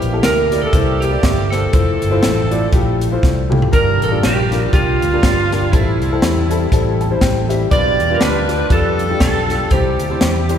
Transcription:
Already playing: upright piano C3, saxophone section A#3 E4 G4, electric slide guitar G4
0.02 fingered electric bass A#1, closed hi-hat
0.13 upright piano A#3 E4 G4 A4
0.23 fingered electric bass D2, saxophone section E4 G4 A#4, electric slide guitar A#4, snare, closed hi-hat
0.51 upright piano A#3 E4 G4 D5, snare, closed hi-hat
0.62 saxophone section E4 A4, electric slide guitar A4
0.73 fingered electric bass C2, upright piano A#3 E4 G4 C5, kick, closed hi-hat
1.00 saxophone section A#3 E4 G4, electric slide guitar G4, closed hi-hat
1.11 upright piano A#3 E4 G4 D5
1.23 fingered electric bass G1, kick, snare, closed hi-hat
1.50 upright piano A#3 E4 G4 C5, saxophone section C4 E4 A4, electric slide guitar A4, snare, closed hi-hat
1.72 fingered electric bass F1, upright piano A3 E4 F4 C5, kick, closed hi-hat
2.02 fingered electric bass G1, closed hi-hat
2.11 upright piano A3 E4 F4 C5
2.23 fingered electric bass A1, snare, closed hi-hat
2.51 upright piano A3 E4 F4 D5, closed hi-hat
2.72 fingered electric bass A#1, upright piano A3 E4 F4 G4, kick, closed hi-hat
3.01 closed hi-hat
3.11 upright piano A3 E4 F4 C5
3.23 fingered electric bass C2, kick, snare
3.49 upright piano A3 E4 F4 G4, mid tom
3.62 floor tom
3.72 fingered electric bass G1, upright piano G2 G3 D4 F4 A#4, saxophone section D4 F4 A#4, electric slide guitar A#4, kick, closed hi-hat
4.02 fingered electric bass A1, electric slide guitar A4, closed hi-hat
4.11 upright piano G3 D4 F4 A#4
4.23 fingered electric bass A#1, saxophone section A#3 D4 G4, electric slide guitar G4, snare, closed hi-hat
4.52 upright piano G3 D4 F4 A#4, snare, closed hi-hat
4.73 fingered electric bass C2, upright piano G3 D4 F4 G4, saxophone section A#3 D4 F4, electric slide guitar F4, kick, closed hi-hat
5.02 fingered electric bass D2, closed hi-hat
5.13 upright piano G3 D4 F4 A#4
5.22 fingered electric bass G1, electric slide guitar F4, kick, snare, closed hi-hat
5.52 upright piano G3 D4 F4 A#4, snare, closed hi-hat
5.71 fingered electric bass A1, upright piano A2 G3 C4 E4 A4, saxophone section G3 C4 E4, electric slide guitar E4, kick, closed hi-hat
6.01 fingered electric bass C2, closed hi-hat
6.12 upright piano G3 C4 E4 A4
6.22 fingered electric bass E2, snare, closed hi-hat
6.49 upright piano G3 C4 E4 A4, closed hi-hat
6.72 fingered electric bass A1, upright piano G3 C4 E4 A4, kick, closed hi-hat
7.01 upright piano A5, closed hi-hat
7.11 upright piano G3 C4 E4 C5
7.21 fingered electric bass A1, upright piano G5, kick, snare, closed hi-hat
7.48 upright piano G3 C4 E4 G4 E5, closed hi-hat
7.70 fingered electric bass B1, upright piano B2 G3 D4 F4 B4, saxophone section F4 G4 D5, electric slide guitar D5, kick, closed hi-hat
7.99 fingered electric bass E2, closed hi-hat
8.10 upright piano G3 D4 F4 B4
8.14 electric slide guitar A#4
8.20 fingered electric bass D2, saxophone section D4 F4 B4, electric slide guitar B4, snare, closed hi-hat
8.48 upright piano G3 D4 F4 G4, snare, closed hi-hat
8.70 fingered electric bass F2, upright piano G3 D4 F4 B4, saxophone section D4 F4 A4, electric slide guitar A4, kick, closed hi-hat
8.99 closed hi-hat
9.10 upright piano G3 D4 F4 G4
9.20 fingered electric bass B1, electric slide guitar A4, kick, snare, closed hi-hat
9.48 upright piano G3 D4 F4 G4, snare, closed hi-hat
9.71 fingered electric bass C2, upright piano C3 G3 C4 E4 C5, saxophone section C4 E4 G4, electric slide guitar G4, kick, closed hi-hat
9.99 fingered electric bass D2, closed hi-hat
10.10 upright piano G3 C4 E4 C5
10.21 fingered electric bass E2, snare, closed hi-hat
10.49 upright piano G3 C4 E4 C5, closed hi-hat

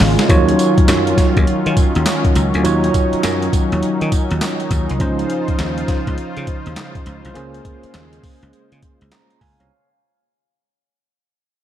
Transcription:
Already playing: analog synth pad C#3 G#3 C#4 F4, tine electric piano A#3 C#4 F4 G#4 C#5
0.00 slap bass G#1, snare, open hi-hat
0.19 snare, closed hi-hat
0.28 slap bass D#2, analog synth pad D#3 F#3 C#4 F4, tine electric piano F3 D#4 F4 C#5, kick, closed hi-hat, tambourine
0.35 tine electric piano F#3
0.49 closed hi-hat
0.59 closed hi-hat, tambourine
0.78 muted slap bass stroke, kick, closed hi-hat
0.88 slap bass F#2, snare, clap, closed hi-hat, tambourine
1.07 closed hi-hat
1.18 kick, snare, closed hi-hat, tambourine
1.37 slap bass D#2, kick, closed hi-hat
1.47 muted slap bass stroke, closed hi-hat
1.66 slap bass D#3, closed hi-hat
1.77 kick, closed hi-hat, tambourine
1.95 slap bass D#2, closed hi-hat
2.06 snare, clap, closed hi-hat, tambourine
2.25 kick, closed hi-hat
2.35 slap bass C#2, closed hi-hat, tambourine
2.54 slap bass D2, closed hi-hat
2.63 slap bass D#2, tine electric piano F#3 D#4 F4 C#5, analog synth pad D#4, closed hi-hat, tambourine
2.84 closed hi-hat
2.94 kick, closed hi-hat, tambourine
3.13 muted slap bass stroke, closed hi-hat
3.23 slap bass F#2, snare, clap, closed hi-hat, tambourine
3.42 closed hi-hat
3.53 kick, closed hi-hat, tambourine
3.72 slap bass D#2, closed hi-hat
3.83 muted slap bass stroke, closed hi-hat
4.01 slap bass D#3, closed hi-hat
4.12 kick, closed hi-hat, tambourine
4.31 slap bass D#2, closed hi-hat
4.41 snare, clap, closed hi-hat, tambourine
4.60 closed hi-hat
4.71 slap bass D#2, kick, closed hi-hat, tambourine
4.89 slap bass C2, closed hi-hat
4.99 slap bass C#2, analog synth pad C#3 F4 C5, tine electric piano F3 C#4 D#4 C5, kick, closed hi-hat
5.19 closed hi-hat
5.30 closed hi-hat
5.48 muted slap bass stroke, kick, closed hi-hat
5.59 slap bass D#2, snare, clap, closed hi-hat
5.78 closed hi-hat
5.88 kick, snare, closed hi-hat
6.07 slap bass C#2, kick, closed hi-hat
6.18 muted slap bass stroke, closed hi-hat
6.37 slap bass C#3, closed hi-hat
6.47 kick, closed hi-hat
6.66 slap bass D#2, closed hi-hat
6.76 snare, clap, closed hi-hat
6.95 kick, closed hi-hat
7.06 slap bass C#2, closed hi-hat
7.25 slap bass C2, closed hi-hat
7.34 slap bass C#2, analog synth pad G#3, tine electric piano A#3 C#4 G#4 C5, closed hi-hat
7.54 closed hi-hat
7.65 kick, closed hi-hat
7.83 muted slap bass stroke, closed hi-hat
7.94 slap bass D#2, snare, clap, closed hi-hat
8.13 closed hi-hat
8.23 kick, open hi-hat
8.43 slap bass C#2, closed hi-hat
8.53 closed hi-hat
8.72 slap bass C#3, closed hi-hat
8.83 kick, closed hi-hat
9.01 slap bass C#2, closed hi-hat
9.11 tine electric piano A#5, snare, clap, closed hi-hat
9.30 closed hi-hat
9.41 slap bass C#2, tine electric piano F5 G#5, kick, open hi-hat
9.60 slap bass C2, tine electric piano C#5 F5, closed hi-hat

